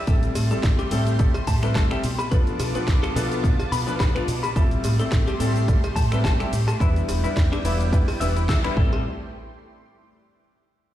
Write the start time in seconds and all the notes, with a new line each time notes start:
0.07 A1 G3 A3 C4 E4 G4 A4 C6, kick, closed hi-hat, shaker
0.23 closed hi-hat, shaker
0.35 A2, open hi-hat, ride, cowbell, shaker
0.51 G3 A3 C4 E4 A4, muted fingered electric bass stroke, closed hi-hat, shaker
0.63 A1, kick, snare, closed hi-hat, shaker
0.79 G4, closed hi-hat, cowbell, shaker
0.91 A2 G3 A3 C4 E4 A4, open hi-hat, ride, shaker
1.07 closed hi-hat, shaker
1.19 A1 G3 A3 C4 E4 A4, kick, closed hi-hat, shaker
1.34 closed hi-hat, cowbell, shaker
1.47 A2 A5, kick, open hi-hat, ride, shaker
1.62 G3 A3 C4 E4 A4 B4, finger snap, closed hi-hat, shaker
1.75 A1 A5, kick, snare, closed hi-hat, cowbell, shaker
1.90 G3 A3 C4 E4 G4 A4, finger snap, closed hi-hat, shaker
2.04 B2 B3 F4 A5 D6, open hi-hat, ride, shaker
2.19 B5, closed hi-hat, cowbell, shaker
2.31 B1 F3 A3 B3 D4 A4 B4, kick, closed hi-hat, shaker
2.47 closed hi-hat, shaker
2.60 B2, open hi-hat, ride, cowbell, shaker
2.75 F3 A3 B3 D4 A4 B4, muted fingered electric bass stroke, closed hi-hat, shaker
2.88 B1, kick, snare, closed hi-hat, shaker
3.03 A4, finger snap, closed hi-hat, cowbell, shaker
3.15 B2 F3 A3 B3 D4 A4 B4, open hi-hat, ride, shaker
3.32 closed hi-hat, shaker
3.43 B1 F3 A3 B3 D4 A4, kick, closed hi-hat, shaker
3.59 closed hi-hat, cowbell, shaker
3.72 B2 B5, open hi-hat, ride, shaker
3.87 F3 A3 B3 D4 B4, closed hi-hat, shaker
4.00 B1 B5, kick, snare, closed hi-hat, cowbell, shaker
4.15 F3 A3 B3 D4 F4 B4, finger snap, closed hi-hat, shaker
4.28 B2, open hi-hat, ride, shaker
4.43 B5, closed hi-hat, cowbell, shaker
4.55 A1 G3 A3 C4 E4 G4 A4 C6, kick, closed hi-hat, shaker
4.71 closed hi-hat, shaker
4.84 A2, open hi-hat, ride, cowbell, shaker
4.99 G3 A3 C4 E4 A4, muted fingered electric bass stroke, closed hi-hat, shaker
5.12 A1, kick, snare, closed hi-hat, shaker
5.27 G4, closed hi-hat, cowbell, shaker
5.40 A2 G3 A3 C4 E4 A4, open hi-hat, ride, shaker
5.56 closed hi-hat, shaker
5.68 A1 G3 A3 C4 E4 A4, kick, closed hi-hat, shaker
5.84 closed hi-hat, cowbell, shaker
5.96 A2 A5, kick, open hi-hat, ride, shaker
6.12 G3 A3 C4 E4 A4 B4, finger snap, closed hi-hat, shaker
6.24 A1 A5, kick, snare, closed hi-hat, cowbell, shaker
6.40 G3 A3 C4 E4 G4 A4, finger snap, closed hi-hat, shaker
6.53 A2, open hi-hat, ride, shaker
6.68 A5, closed hi-hat, cowbell, shaker
6.80 E2 G3 B3 D4 E4 B4 D5 G5, kick, closed hi-hat, shaker
6.96 closed hi-hat, shaker
7.08 E1, open hi-hat, ride, cowbell, shaker
7.24 G3 B3 D4 E4 B4, muted fingered electric bass stroke, closed hi-hat, shaker
7.37 E2, kick, snare, closed hi-hat, shaker
7.52 D4, finger snap, closed hi-hat, cowbell, shaker
7.64 E1 G3 B3 D4 E4 B4, open hi-hat, ride, shaker
7.80 closed hi-hat, shaker
7.92 E2 G3 B3 D4 E4 B4, kick, closed hi-hat, shaker
8.08 open hi-hat, cowbell, shaker
8.20 E1 G3 B3 D4 E4 B4 E5, open hi-hat, ride, shaker
8.36 E4, closed hi-hat, shaker
8.49 E2 E5, kick, snare, closed hi-hat, cowbell, shaker
8.64 G3 B3 D4 E4 B4, finger snap, closed hi-hat, shaker
8.76 A1 G3 A3 C4 E4 A4, kick
8.93 cowbell